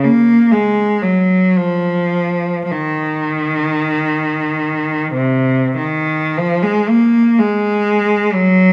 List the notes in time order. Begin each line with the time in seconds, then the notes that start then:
0.05 A#3
0.52 G#3
1.02 F#3
1.58 F3
2.65 F3
2.71 D#3
5.14 C3
5.77 D#3
6.37 F3
6.63 G#3
6.89 A#3
7.39 G#3
8.35 F#3